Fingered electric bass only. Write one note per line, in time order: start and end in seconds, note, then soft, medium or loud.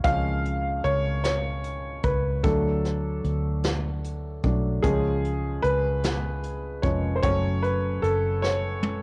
0.05 0.81 C#2 medium
0.85 2.00 C#2 medium
2.04 2.42 C#2 loud
2.44 3.20 D2 medium
3.24 4.40 D2 medium
4.44 4.81 B1 medium
4.84 5.60 C#2 loud
5.64 6.85 C#2 medium
6.83 7.21 F1 medium
7.23 7.99 F#1 loud
8.03 9.02 F#1 medium